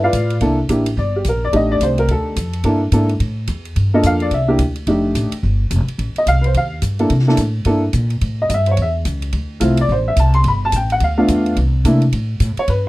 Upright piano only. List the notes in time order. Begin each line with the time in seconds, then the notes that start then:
0.04 F4 B4 D5 F5
0.41 A#3 D4 E4 A4
0.69 A#3 D4 E4 G4
0.99 D5
1.16 G4
1.29 A#4
1.45 D5
1.53 A3 D4 D#4 G4 D#5
1.71 D5
1.83 C5
1.99 A#4
2.11 A4
2.64 A#3 D4 E4 A4
2.93 A#3 D4 E4 A4
3.94 A#3 D4 F4 A4 D#5
4.06 F5
4.22 D5
4.34 E5
4.48 A#3 D4 E4 G4
4.88 A3 D4 D#4 G4
6.18 D#5
6.28 F5
6.46 C5
6.57 F5
6.99 A#3 D4 E4 A4
7.27 A#3 D4 E4 A4
7.66 A#3 D4 E4 A4
8.42 D#5
8.54 E5
8.71 C#5
8.82 E5
9.60 A3 C4 E4 F4
9.81 D5
9.92 C5
10.08 E5
10.19 A5
10.35 C6
10.48 B5
10.65 A5
10.76 G5
10.92 F#5
11.04 F5
11.18 A3 B3 D4 F4
11.85 A3 A#3 D4 E4
12.59 C#5
12.69 B4